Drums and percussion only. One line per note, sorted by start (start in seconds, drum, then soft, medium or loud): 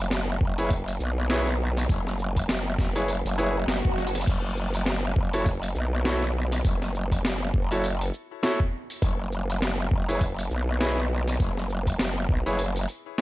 0.11 snare loud
0.11 closed hi-hat medium
0.41 kick loud
0.58 closed hi-hat medium
0.70 kick loud
0.70 closed hi-hat medium
0.88 closed hi-hat soft
1.00 shaker medium
1.30 snare loud
1.30 closed hi-hat medium
1.47 snare soft
1.77 snare soft
1.77 closed hi-hat medium
1.89 kick loud
1.89 closed hi-hat medium
2.07 snare soft
2.19 shaker medium
2.36 kick medium
2.36 closed hi-hat medium
2.49 snare loud
2.49 closed hi-hat medium
2.79 kick loud
2.79 snare medium
2.79 closed hi-hat soft
2.96 closed hi-hat medium
3.08 closed hi-hat medium
3.26 closed hi-hat medium
3.38 closed hi-hat soft
3.38 shaker medium
3.68 snare loud
3.68 closed hi-hat medium
3.85 kick loud
3.98 snare soft
3.98 closed hi-hat medium
4.07 closed hi-hat medium
4.15 snare soft
4.15 closed hi-hat medium
4.21 closed hi-hat medium
4.27 kick loud
4.27 closed hi-hat medium
4.27 crash medium
4.57 shaker medium
4.74 closed hi-hat medium
4.86 snare loud
4.86 closed hi-hat medium
5.16 kick loud
5.33 closed hi-hat medium
5.46 kick loud
5.46 closed hi-hat medium
5.63 closed hi-hat medium
5.75 shaker medium
6.05 snare loud
6.05 closed hi-hat medium
6.22 snare soft
6.52 snare soft
6.52 closed hi-hat medium
6.65 kick loud
6.65 closed hi-hat medium
6.82 snare soft
6.95 shaker medium
7.12 kick medium
7.12 closed hi-hat medium
7.25 snare loud
7.25 closed hi-hat medium
7.54 kick loud
7.71 closed hi-hat medium
7.84 closed hi-hat medium
8.01 closed hi-hat medium
8.14 shaker medium
8.43 snare loud
8.43 closed hi-hat medium
8.60 kick loud
8.90 closed hi-hat medium
9.02 kick loud
9.02 closed hi-hat medium
9.32 shaker medium
9.50 closed hi-hat medium
9.62 snare loud
9.62 closed hi-hat medium
9.91 kick loud
10.09 closed hi-hat medium
10.21 kick loud
10.21 closed hi-hat medium
10.39 closed hi-hat medium
10.51 shaker medium
10.81 snare loud
10.81 closed hi-hat medium
10.98 snare soft
11.28 snare soft
11.28 closed hi-hat medium
11.40 kick loud
11.40 closed hi-hat medium
11.57 snare soft
11.70 shaker medium
11.87 kick medium
11.87 closed hi-hat medium
11.99 snare loud
11.99 closed hi-hat medium
12.29 kick loud
12.46 closed hi-hat medium
12.59 closed hi-hat medium
12.76 closed hi-hat medium
12.88 closed hi-hat soft
12.88 shaker medium